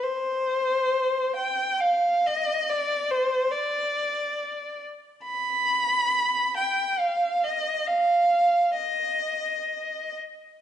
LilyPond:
\new Staff \with { instrumentName = "Violin" } { \time 3/4 \key c \minor \tempo 4 = 68 c''4. g''8 f''8 ees''8 | d''8 c''8 d''4. r8 | b''4. g''8 f''8 ees''8 | f''4 ees''4. r8 | }